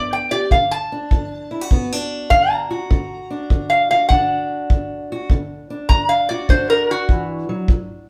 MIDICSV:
0, 0, Header, 1, 4, 480
1, 0, Start_track
1, 0, Tempo, 597015
1, 416, Time_signature, 4, 2, 24, 8
1, 6506, End_track
2, 0, Start_track
2, 0, Title_t, "Resonator guitar played with a steel bar"
2, 0, Program_c, 0, 25
2, 0, Note_on_c, 0, 74, 107
2, 92, Note_off_c, 0, 74, 0
2, 103, Note_on_c, 0, 79, 84
2, 250, Note_on_c, 0, 74, 96
2, 255, Note_off_c, 0, 79, 0
2, 408, Note_off_c, 0, 74, 0
2, 415, Note_on_c, 0, 77, 83
2, 571, Note_off_c, 0, 77, 0
2, 574, Note_on_c, 0, 81, 102
2, 1507, Note_off_c, 0, 81, 0
2, 1850, Note_on_c, 0, 77, 114
2, 2017, Note_off_c, 0, 77, 0
2, 2017, Note_on_c, 0, 82, 87
2, 2949, Note_off_c, 0, 82, 0
2, 2972, Note_on_c, 0, 77, 87
2, 3130, Note_off_c, 0, 77, 0
2, 3141, Note_on_c, 0, 77, 92
2, 3282, Note_off_c, 0, 77, 0
2, 3285, Note_on_c, 0, 78, 104
2, 3597, Note_off_c, 0, 78, 0
2, 4734, Note_on_c, 0, 82, 104
2, 4891, Note_off_c, 0, 82, 0
2, 4895, Note_on_c, 0, 77, 91
2, 5051, Note_off_c, 0, 77, 0
2, 5056, Note_on_c, 0, 74, 89
2, 5212, Note_off_c, 0, 74, 0
2, 5224, Note_on_c, 0, 72, 88
2, 5376, Note_off_c, 0, 72, 0
2, 5385, Note_on_c, 0, 70, 93
2, 5536, Note_off_c, 0, 70, 0
2, 5555, Note_on_c, 0, 66, 98
2, 5803, Note_off_c, 0, 66, 0
2, 6506, End_track
3, 0, Start_track
3, 0, Title_t, "Steel-string acoustic guitar"
3, 0, Program_c, 1, 25
3, 0, Note_on_c, 1, 43, 66
3, 0, Note_on_c, 1, 59, 57
3, 0, Note_on_c, 1, 62, 57
3, 252, Note_on_c, 1, 67, 66
3, 377, Note_off_c, 1, 43, 0
3, 397, Note_off_c, 1, 67, 0
3, 400, Note_off_c, 1, 59, 0
3, 429, Note_on_c, 1, 50, 79
3, 738, Note_off_c, 1, 62, 0
3, 741, Note_on_c, 1, 62, 58
3, 870, Note_off_c, 1, 50, 0
3, 903, Note_on_c, 1, 50, 72
3, 1213, Note_on_c, 1, 64, 62
3, 1297, Note_off_c, 1, 64, 0
3, 1297, Note_on_c, 1, 66, 62
3, 1347, Note_off_c, 1, 50, 0
3, 1381, Note_off_c, 1, 62, 0
3, 1382, Note_on_c, 1, 50, 71
3, 1384, Note_on_c, 1, 59, 57
3, 1548, Note_off_c, 1, 59, 0
3, 1548, Note_on_c, 1, 62, 51
3, 1827, Note_off_c, 1, 50, 0
3, 1853, Note_on_c, 1, 50, 67
3, 2165, Note_off_c, 1, 66, 0
3, 2175, Note_on_c, 1, 66, 68
3, 2303, Note_off_c, 1, 50, 0
3, 2335, Note_on_c, 1, 50, 84
3, 2344, Note_off_c, 1, 62, 0
3, 2657, Note_on_c, 1, 62, 58
3, 2783, Note_off_c, 1, 50, 0
3, 2822, Note_on_c, 1, 50, 69
3, 3138, Note_off_c, 1, 66, 0
3, 3141, Note_on_c, 1, 66, 64
3, 3267, Note_off_c, 1, 50, 0
3, 3308, Note_on_c, 1, 50, 73
3, 3313, Note_off_c, 1, 62, 0
3, 3316, Note_on_c, 1, 62, 66
3, 3750, Note_off_c, 1, 50, 0
3, 3783, Note_on_c, 1, 50, 73
3, 4097, Note_off_c, 1, 66, 0
3, 4116, Note_on_c, 1, 66, 70
3, 4227, Note_off_c, 1, 50, 0
3, 4249, Note_off_c, 1, 66, 0
3, 4268, Note_on_c, 1, 50, 84
3, 4582, Note_off_c, 1, 62, 0
3, 4585, Note_on_c, 1, 62, 61
3, 4709, Note_off_c, 1, 50, 0
3, 4750, Note_on_c, 1, 50, 71
3, 5069, Note_on_c, 1, 66, 65
3, 5190, Note_off_c, 1, 50, 0
3, 5221, Note_on_c, 1, 50, 71
3, 5222, Note_off_c, 1, 62, 0
3, 5225, Note_on_c, 1, 62, 55
3, 5666, Note_off_c, 1, 50, 0
3, 5710, Note_on_c, 1, 52, 59
3, 6018, Note_off_c, 1, 52, 0
3, 6022, Note_on_c, 1, 54, 67
3, 6165, Note_off_c, 1, 66, 0
3, 6181, Note_off_c, 1, 54, 0
3, 6186, Note_on_c, 1, 43, 78
3, 6506, Note_off_c, 1, 43, 0
3, 6506, Note_off_c, 1, 62, 0
3, 6506, End_track
4, 0, Start_track
4, 0, Title_t, "Drums"
4, 411, Note_on_c, 9, 36, 66
4, 491, Note_off_c, 9, 36, 0
4, 893, Note_on_c, 9, 36, 70
4, 973, Note_off_c, 9, 36, 0
4, 1374, Note_on_c, 9, 36, 69
4, 1454, Note_off_c, 9, 36, 0
4, 1855, Note_on_c, 9, 36, 71
4, 1935, Note_off_c, 9, 36, 0
4, 2337, Note_on_c, 9, 36, 69
4, 2417, Note_off_c, 9, 36, 0
4, 2816, Note_on_c, 9, 36, 66
4, 2897, Note_off_c, 9, 36, 0
4, 3299, Note_on_c, 9, 36, 70
4, 3379, Note_off_c, 9, 36, 0
4, 3779, Note_on_c, 9, 36, 70
4, 3859, Note_off_c, 9, 36, 0
4, 4258, Note_on_c, 9, 36, 66
4, 4339, Note_off_c, 9, 36, 0
4, 4739, Note_on_c, 9, 36, 75
4, 4819, Note_off_c, 9, 36, 0
4, 5218, Note_on_c, 9, 36, 77
4, 5299, Note_off_c, 9, 36, 0
4, 5699, Note_on_c, 9, 36, 68
4, 5779, Note_off_c, 9, 36, 0
4, 6177, Note_on_c, 9, 36, 71
4, 6258, Note_off_c, 9, 36, 0
4, 6506, End_track
0, 0, End_of_file